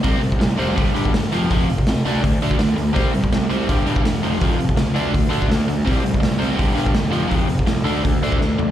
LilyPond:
<<
  \new Staff \with { instrumentName = "Overdriven electric guitar" } { \clef bass \time 4/4 \key d \dorian \tempo 4 = 165 <c g c'>8 <c g>8 <c g>8 <c g c'>8 <g, d g>8 <g, d g>8 <g, d>8 <f, c f>8 | <f, c f>8 <f, c>8 <f, c>8 <d a d'>8 <d a>8 <d a d'>8 <d a>8 <d a>8 | <c g c'>8 <c g>8 <c g>8 <c g c'>8 <g, d g>8 <g, d g>8 <g, d>8 <f, c f>8 | <f, c f>8 <f, c>8 <f, c>8 <d a d'>8 <d a>8 <d a d'>8 <d a>8 <d a>8 |
<c g c'>8 <c g>8 <c g>8 <c g c'>8 <g, d g>8 <g, d g>8 <g, d>8 <f, c f>8 | <f, c f>8 <f, c>8 <f, c>8 <d a d'>8 <d a>8 <d a d'>8 <d a>8 <d a>8 | }
  \new Staff \with { instrumentName = "Picked electric bass" } { \clef bass \time 4/4 \key d \dorian c,8 c,8 c,8 f,,8 g,,8 g,,8 g,,8 f,,8 | f,,8 f,,8 f,,8 d,8 d,8 d,8 d,8 d,8 | c,8 c,8 c,8 c,8 g,,8 g,,8 e,,8 f,,8 | f,,8 f,,8 des,8 d,8 d,8 d,8 d,8 d,8 |
c,8 c,8 c,8 c,8 g,,8 g,,8 e,,8 f,,8 | f,,8 f,,8 c,8 d,8 d,8 d,8 d,8 d,8 | }
  \new DrumStaff \with { instrumentName = "Drums" } \drummode { \time 4/4 <hho bd>8 hho16 bd16 <hho sn>8 hho8 <hho bd>8 hho16 bd16 <hho sn>8 hho8 | <hho bd>8 hho16 bd16 <hho sn>8 hho8 <hho bd>8 hho16 bd16 <hho sn>8 hho8 | <hho bd>8 hho16 bd16 <hho sn>8 hho8 <hho bd>8 hho16 bd16 <hho sn>8 hho8 | <hho bd>8 hho16 bd16 <hho sn>8 hho8 <hho bd>8 hho16 bd16 <hho sn>8 hho8 |
<hho bd>8 hho16 bd16 <hho sn>8 hho8 <hho bd>8 hho16 bd16 <hho sn>8 hho8 | <hho bd>8 hho16 bd16 <hho sn>8 hho8 <hho bd>8 hho16 bd16 sn8 tomfh8 | }
>>